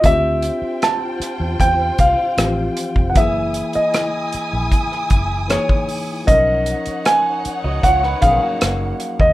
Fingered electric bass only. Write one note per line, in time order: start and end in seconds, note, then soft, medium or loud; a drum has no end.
0.04 0.49 D2 medium
0.62 muted fingered electric bass stroke soft
1.20 muted fingered electric bass stroke soft
1.40 1.55 E2 medium
1.60 1.90 E2 medium
1.99 2.14 C2 medium
2.38 2.68 A1 medium
2.96 3.16 F1 medium
3.16 3.61 F#1 medium
3.76 muted fingered electric bass stroke soft
4.34 muted fingered electric bass stroke soft
4.53 4.68 A#1 medium
5.11 5.56 F#1 medium
6.28 6.73 B1 medium
6.87 muted fingered electric bass stroke soft
7.46 muted fingered electric bass stroke soft
7.64 7.79 C#2 medium
7.84 8.14 C#2 medium
8.23 8.38 A#1 medium
8.62 8.92 F#1 medium
9.20 9.33 D#2 medium